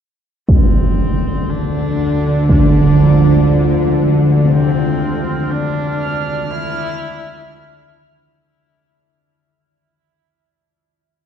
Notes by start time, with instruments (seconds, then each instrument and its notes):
0.48 synth drone D2 D3, horsehead fiddle C4, impact
1.50 horsehead fiddle D4
2.49 horsehead fiddle D4, impact
3.03 church bells F3
4.45 church bells C3
4.49 horsehead fiddle C4, synth texture F6
5.50 horsehead fiddle D4
6.51 horsehead fiddle E4